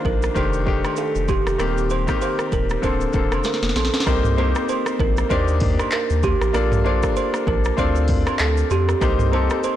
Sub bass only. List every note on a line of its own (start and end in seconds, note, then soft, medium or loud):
0.05 0.29 A#1 medium
0.36 0.84 F1 loud
1.16 1.39 F1 medium
1.46 1.56 F1 medium
1.59 2.07 D#1 loud
2.52 2.76 D#1 loud
2.83 3.07 D1 loud
3.14 3.28 D1 medium
3.32 3.42 F1 medium
3.62 3.73 F1 medium
3.76 3.90 A#1 medium
4.07 4.55 C2 loud
5.00 5.23 A#1 medium
5.31 5.78 D#2 loud
6.10 6.34 D#2 medium
6.41 6.51 A1 medium
6.54 7.02 A#1 loud
7.47 7.71 A#1 loud
7.78 8.26 D2 loud
8.40 8.64 D2 loud
8.71 8.95 F2 loud
9.01 9.49 C2 loud